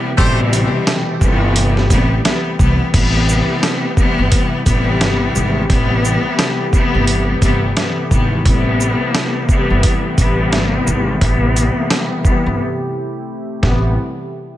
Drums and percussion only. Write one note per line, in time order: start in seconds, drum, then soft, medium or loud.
0.18 kick loud
0.18 closed hi-hat medium
0.53 closed hi-hat medium
0.53 shaker medium
0.87 snare loud
0.87 closed hi-hat medium
1.21 kick loud
1.21 shaker soft
1.56 closed hi-hat loud
1.77 snare soft
1.90 kick medium
1.90 closed hi-hat medium
1.90 shaker medium
2.25 snare loud
2.25 closed hi-hat medium
2.59 kick medium
2.59 shaker medium
2.94 kick loud
2.94 closed hi-hat medium
2.94 crash medium
3.29 shaker medium
3.63 snare loud
3.63 closed hi-hat medium
3.97 kick loud
3.97 shaker soft
4.32 kick medium
4.32 closed hi-hat loud
4.66 kick medium
4.66 closed hi-hat medium
4.66 shaker medium
5.01 snare loud
5.01 closed hi-hat medium
5.36 shaker medium
5.70 kick loud
5.70 closed hi-hat medium
6.05 shaker medium
6.39 snare loud
6.39 closed hi-hat medium
6.73 kick loud
6.73 shaker soft
7.08 closed hi-hat loud
7.42 kick medium
7.42 closed hi-hat medium
7.42 shaker medium
7.77 snare loud
7.77 closed hi-hat medium
8.11 kick loud
8.11 shaker soft
8.45 kick loud
8.45 closed hi-hat medium
8.81 shaker medium
9.15 snare loud
9.15 closed hi-hat medium
9.49 kick loud
9.49 shaker soft
9.83 kick medium
9.83 closed hi-hat loud
10.18 kick medium
10.18 closed hi-hat medium
10.18 shaker medium
10.53 snare loud
10.53 closed hi-hat medium
10.87 shaker medium
11.21 kick loud
11.21 closed hi-hat medium
11.56 closed hi-hat medium
11.56 shaker medium
11.90 snare loud
11.90 closed hi-hat medium
12.25 kick loud
12.25 shaker soft
13.63 kick loud
13.63 snare medium